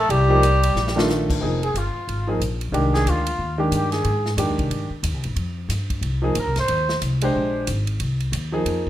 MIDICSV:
0, 0, Header, 1, 7, 480
1, 0, Start_track
1, 0, Tempo, 329308
1, 146, Time_signature, 4, 2, 24, 8
1, 12967, End_track
2, 0, Start_track
2, 0, Title_t, "Trumpet"
2, 0, Program_c, 0, 56
2, 0, Note_on_c, 0, 69, 88
2, 152, Note_on_c, 0, 67, 89
2, 174, Note_off_c, 0, 69, 0
2, 1587, Note_off_c, 0, 67, 0
2, 2376, Note_on_c, 0, 68, 80
2, 2591, Note_on_c, 0, 65, 67
2, 2613, Note_off_c, 0, 68, 0
2, 3342, Note_off_c, 0, 65, 0
2, 4281, Note_on_c, 0, 68, 100
2, 4505, Note_on_c, 0, 65, 83
2, 4527, Note_off_c, 0, 68, 0
2, 5259, Note_off_c, 0, 65, 0
2, 5453, Note_on_c, 0, 67, 78
2, 5707, Note_off_c, 0, 67, 0
2, 5715, Note_on_c, 0, 68, 85
2, 6334, Note_off_c, 0, 68, 0
2, 9305, Note_on_c, 0, 70, 76
2, 9560, Note_off_c, 0, 70, 0
2, 9605, Note_on_c, 0, 72, 95
2, 10201, Note_off_c, 0, 72, 0
2, 12967, End_track
3, 0, Start_track
3, 0, Title_t, "Grand piano"
3, 0, Program_c, 1, 0
3, 414, Note_on_c, 1, 53, 70
3, 426, Note_on_c, 1, 58, 70
3, 436, Note_on_c, 1, 63, 63
3, 436, Note_on_c, 1, 67, 85
3, 593, Note_off_c, 1, 53, 0
3, 599, Note_off_c, 1, 58, 0
3, 604, Note_off_c, 1, 63, 0
3, 604, Note_off_c, 1, 67, 0
3, 1396, Note_on_c, 1, 57, 68
3, 1399, Note_on_c, 1, 51, 74
3, 1407, Note_on_c, 1, 62, 60
3, 1418, Note_on_c, 1, 65, 86
3, 2025, Note_off_c, 1, 57, 0
3, 2026, Note_off_c, 1, 51, 0
3, 2030, Note_off_c, 1, 62, 0
3, 2036, Note_off_c, 1, 65, 0
3, 2054, Note_on_c, 1, 53, 56
3, 2067, Note_on_c, 1, 63, 61
3, 2068, Note_on_c, 1, 58, 56
3, 2082, Note_on_c, 1, 68, 67
3, 2324, Note_off_c, 1, 53, 0
3, 2331, Note_off_c, 1, 63, 0
3, 2332, Note_off_c, 1, 58, 0
3, 2338, Note_off_c, 1, 68, 0
3, 3313, Note_on_c, 1, 53, 62
3, 3318, Note_on_c, 1, 58, 55
3, 3325, Note_on_c, 1, 63, 61
3, 3335, Note_on_c, 1, 68, 71
3, 3481, Note_off_c, 1, 53, 0
3, 3484, Note_off_c, 1, 58, 0
3, 3487, Note_off_c, 1, 63, 0
3, 3492, Note_off_c, 1, 68, 0
3, 3970, Note_on_c, 1, 51, 69
3, 3982, Note_on_c, 1, 56, 64
3, 3987, Note_on_c, 1, 62, 69
3, 3995, Note_on_c, 1, 67, 74
3, 4692, Note_off_c, 1, 51, 0
3, 4698, Note_off_c, 1, 56, 0
3, 4701, Note_off_c, 1, 62, 0
3, 4705, Note_off_c, 1, 67, 0
3, 5220, Note_on_c, 1, 51, 70
3, 5221, Note_on_c, 1, 56, 59
3, 5240, Note_on_c, 1, 62, 59
3, 5241, Note_on_c, 1, 67, 76
3, 5856, Note_off_c, 1, 51, 0
3, 5856, Note_off_c, 1, 56, 0
3, 5866, Note_off_c, 1, 62, 0
3, 5867, Note_off_c, 1, 67, 0
3, 6376, Note_on_c, 1, 51, 62
3, 6382, Note_on_c, 1, 56, 61
3, 6387, Note_on_c, 1, 62, 59
3, 6391, Note_on_c, 1, 67, 73
3, 7095, Note_off_c, 1, 51, 0
3, 7098, Note_off_c, 1, 56, 0
3, 7101, Note_off_c, 1, 62, 0
3, 7103, Note_off_c, 1, 67, 0
3, 9063, Note_on_c, 1, 53, 68
3, 9072, Note_on_c, 1, 58, 62
3, 9078, Note_on_c, 1, 63, 63
3, 9095, Note_on_c, 1, 68, 70
3, 9236, Note_off_c, 1, 53, 0
3, 9241, Note_off_c, 1, 58, 0
3, 9244, Note_off_c, 1, 63, 0
3, 9252, Note_off_c, 1, 68, 0
3, 10528, Note_on_c, 1, 56, 78
3, 10541, Note_on_c, 1, 62, 63
3, 10545, Note_on_c, 1, 67, 69
3, 10559, Note_on_c, 1, 72, 82
3, 11151, Note_off_c, 1, 56, 0
3, 11158, Note_off_c, 1, 62, 0
3, 11160, Note_off_c, 1, 67, 0
3, 11167, Note_off_c, 1, 72, 0
3, 12423, Note_on_c, 1, 53, 67
3, 12428, Note_on_c, 1, 58, 60
3, 12436, Note_on_c, 1, 63, 57
3, 12441, Note_on_c, 1, 68, 77
3, 12967, Note_off_c, 1, 53, 0
3, 12967, Note_off_c, 1, 58, 0
3, 12967, Note_off_c, 1, 63, 0
3, 12967, Note_off_c, 1, 68, 0
3, 12967, End_track
4, 0, Start_track
4, 0, Title_t, "Tenor saxophone"
4, 0, Program_c, 2, 66
4, 0, Note_on_c, 2, 57, 80
4, 139, Note_on_c, 2, 55, 79
4, 161, Note_off_c, 2, 57, 0
4, 1580, Note_off_c, 2, 55, 0
4, 12967, End_track
5, 0, Start_track
5, 0, Title_t, "Upright bass"
5, 0, Program_c, 3, 32
5, 135, Note_on_c, 3, 36, 104
5, 1051, Note_off_c, 3, 36, 0
5, 1092, Note_on_c, 3, 34, 88
5, 2009, Note_off_c, 3, 34, 0
5, 2066, Note_on_c, 3, 29, 85
5, 2530, Note_off_c, 3, 29, 0
5, 2540, Note_on_c, 3, 31, 69
5, 2816, Note_off_c, 3, 31, 0
5, 3025, Note_on_c, 3, 32, 77
5, 3489, Note_off_c, 3, 32, 0
5, 3496, Note_on_c, 3, 34, 86
5, 3957, Note_off_c, 3, 34, 0
5, 3966, Note_on_c, 3, 36, 83
5, 4439, Note_off_c, 3, 36, 0
5, 4455, Note_on_c, 3, 38, 78
5, 4924, Note_off_c, 3, 38, 0
5, 4936, Note_on_c, 3, 39, 81
5, 5404, Note_off_c, 3, 39, 0
5, 5411, Note_on_c, 3, 43, 91
5, 5881, Note_off_c, 3, 43, 0
5, 5896, Note_on_c, 3, 44, 94
5, 6357, Note_off_c, 3, 44, 0
5, 6366, Note_on_c, 3, 41, 80
5, 6550, Note_off_c, 3, 41, 0
5, 6550, Note_on_c, 3, 39, 60
5, 6694, Note_off_c, 3, 39, 0
5, 6703, Note_on_c, 3, 36, 63
5, 6842, Note_off_c, 3, 36, 0
5, 6851, Note_on_c, 3, 43, 82
5, 7131, Note_off_c, 3, 43, 0
5, 7331, Note_on_c, 3, 39, 92
5, 7491, Note_off_c, 3, 39, 0
5, 7491, Note_on_c, 3, 36, 55
5, 7647, Note_off_c, 3, 36, 0
5, 7656, Note_on_c, 3, 32, 70
5, 7800, Note_off_c, 3, 32, 0
5, 7809, Note_on_c, 3, 41, 87
5, 8281, Note_off_c, 3, 41, 0
5, 8287, Note_on_c, 3, 43, 82
5, 8756, Note_off_c, 3, 43, 0
5, 8765, Note_on_c, 3, 36, 83
5, 9239, Note_off_c, 3, 36, 0
5, 9263, Note_on_c, 3, 38, 95
5, 9420, Note_off_c, 3, 38, 0
5, 9420, Note_on_c, 3, 36, 61
5, 9572, Note_off_c, 3, 36, 0
5, 9581, Note_on_c, 3, 32, 64
5, 9730, Note_off_c, 3, 32, 0
5, 9751, Note_on_c, 3, 39, 85
5, 10213, Note_off_c, 3, 39, 0
5, 10229, Note_on_c, 3, 36, 81
5, 10692, Note_off_c, 3, 36, 0
5, 10713, Note_on_c, 3, 34, 85
5, 11174, Note_off_c, 3, 34, 0
5, 11185, Note_on_c, 3, 32, 90
5, 11650, Note_off_c, 3, 32, 0
5, 11661, Note_on_c, 3, 36, 91
5, 12123, Note_off_c, 3, 36, 0
5, 12131, Note_on_c, 3, 39, 92
5, 12603, Note_off_c, 3, 39, 0
5, 12610, Note_on_c, 3, 41, 79
5, 12967, Note_off_c, 3, 41, 0
5, 12967, End_track
6, 0, Start_track
6, 0, Title_t, "Muted upright bass strokes"
6, 2853, Note_on_c, 9, 29, 41
6, 2999, Note_off_c, 9, 29, 0
6, 7140, Note_on_c, 9, 29, 42
6, 7286, Note_off_c, 9, 29, 0
6, 12967, End_track
7, 0, Start_track
7, 0, Title_t, "Drums"
7, 147, Note_on_c, 9, 51, 68
7, 293, Note_off_c, 9, 51, 0
7, 629, Note_on_c, 9, 44, 64
7, 629, Note_on_c, 9, 51, 71
7, 775, Note_off_c, 9, 44, 0
7, 775, Note_off_c, 9, 51, 0
7, 924, Note_on_c, 9, 51, 73
7, 1069, Note_off_c, 9, 51, 0
7, 1108, Note_on_c, 9, 38, 51
7, 1253, Note_off_c, 9, 38, 0
7, 1277, Note_on_c, 9, 38, 62
7, 1423, Note_off_c, 9, 38, 0
7, 1441, Note_on_c, 9, 38, 91
7, 1587, Note_off_c, 9, 38, 0
7, 1594, Note_on_c, 9, 44, 53
7, 1599, Note_on_c, 9, 38, 54
7, 1740, Note_off_c, 9, 44, 0
7, 1745, Note_off_c, 9, 38, 0
7, 1891, Note_on_c, 9, 36, 78
7, 1899, Note_on_c, 9, 49, 83
7, 2037, Note_off_c, 9, 36, 0
7, 2045, Note_off_c, 9, 49, 0
7, 2377, Note_on_c, 9, 51, 43
7, 2522, Note_off_c, 9, 51, 0
7, 2558, Note_on_c, 9, 44, 52
7, 2558, Note_on_c, 9, 51, 61
7, 2704, Note_off_c, 9, 44, 0
7, 2704, Note_off_c, 9, 51, 0
7, 3041, Note_on_c, 9, 51, 52
7, 3186, Note_off_c, 9, 51, 0
7, 3520, Note_on_c, 9, 44, 58
7, 3520, Note_on_c, 9, 51, 61
7, 3665, Note_off_c, 9, 44, 0
7, 3665, Note_off_c, 9, 51, 0
7, 3804, Note_on_c, 9, 51, 48
7, 3950, Note_off_c, 9, 51, 0
7, 3996, Note_on_c, 9, 51, 54
7, 4142, Note_off_c, 9, 51, 0
7, 4291, Note_on_c, 9, 38, 53
7, 4436, Note_off_c, 9, 38, 0
7, 4472, Note_on_c, 9, 44, 49
7, 4472, Note_on_c, 9, 51, 67
7, 4618, Note_off_c, 9, 44, 0
7, 4618, Note_off_c, 9, 51, 0
7, 4759, Note_on_c, 9, 51, 68
7, 4905, Note_off_c, 9, 51, 0
7, 5422, Note_on_c, 9, 44, 62
7, 5422, Note_on_c, 9, 51, 61
7, 5567, Note_off_c, 9, 44, 0
7, 5567, Note_off_c, 9, 51, 0
7, 5714, Note_on_c, 9, 51, 42
7, 5719, Note_on_c, 9, 38, 48
7, 5860, Note_off_c, 9, 51, 0
7, 5864, Note_off_c, 9, 38, 0
7, 5896, Note_on_c, 9, 51, 60
7, 6042, Note_off_c, 9, 51, 0
7, 6206, Note_on_c, 9, 38, 49
7, 6352, Note_off_c, 9, 38, 0
7, 6382, Note_on_c, 9, 44, 51
7, 6382, Note_on_c, 9, 51, 74
7, 6528, Note_off_c, 9, 44, 0
7, 6528, Note_off_c, 9, 51, 0
7, 6681, Note_on_c, 9, 36, 50
7, 6689, Note_on_c, 9, 51, 45
7, 6827, Note_off_c, 9, 36, 0
7, 6835, Note_off_c, 9, 51, 0
7, 6864, Note_on_c, 9, 51, 64
7, 7010, Note_off_c, 9, 51, 0
7, 7339, Note_on_c, 9, 44, 54
7, 7339, Note_on_c, 9, 51, 76
7, 7485, Note_off_c, 9, 44, 0
7, 7485, Note_off_c, 9, 51, 0
7, 7631, Note_on_c, 9, 51, 46
7, 7777, Note_off_c, 9, 51, 0
7, 7819, Note_on_c, 9, 51, 56
7, 7964, Note_off_c, 9, 51, 0
7, 8304, Note_on_c, 9, 44, 58
7, 8304, Note_on_c, 9, 51, 70
7, 8308, Note_on_c, 9, 38, 34
7, 8449, Note_off_c, 9, 44, 0
7, 8449, Note_off_c, 9, 51, 0
7, 8454, Note_off_c, 9, 38, 0
7, 8600, Note_on_c, 9, 36, 56
7, 8601, Note_on_c, 9, 51, 51
7, 8746, Note_off_c, 9, 36, 0
7, 8747, Note_off_c, 9, 51, 0
7, 8782, Note_on_c, 9, 51, 61
7, 8928, Note_off_c, 9, 51, 0
7, 9258, Note_on_c, 9, 44, 48
7, 9258, Note_on_c, 9, 51, 71
7, 9404, Note_off_c, 9, 44, 0
7, 9404, Note_off_c, 9, 51, 0
7, 9558, Note_on_c, 9, 51, 46
7, 9563, Note_on_c, 9, 38, 53
7, 9704, Note_off_c, 9, 51, 0
7, 9708, Note_off_c, 9, 38, 0
7, 9739, Note_on_c, 9, 51, 67
7, 9885, Note_off_c, 9, 51, 0
7, 10044, Note_on_c, 9, 38, 60
7, 10190, Note_off_c, 9, 38, 0
7, 10227, Note_on_c, 9, 44, 49
7, 10227, Note_on_c, 9, 51, 66
7, 10372, Note_off_c, 9, 44, 0
7, 10372, Note_off_c, 9, 51, 0
7, 10516, Note_on_c, 9, 51, 69
7, 10661, Note_off_c, 9, 51, 0
7, 11182, Note_on_c, 9, 44, 59
7, 11182, Note_on_c, 9, 51, 74
7, 11328, Note_off_c, 9, 44, 0
7, 11328, Note_off_c, 9, 51, 0
7, 11473, Note_on_c, 9, 51, 49
7, 11619, Note_off_c, 9, 51, 0
7, 11657, Note_on_c, 9, 51, 63
7, 11803, Note_off_c, 9, 51, 0
7, 11958, Note_on_c, 9, 51, 44
7, 12104, Note_off_c, 9, 51, 0
7, 12142, Note_on_c, 9, 44, 50
7, 12142, Note_on_c, 9, 51, 76
7, 12288, Note_off_c, 9, 44, 0
7, 12288, Note_off_c, 9, 51, 0
7, 12622, Note_on_c, 9, 51, 70
7, 12768, Note_off_c, 9, 51, 0
7, 12967, End_track
0, 0, End_of_file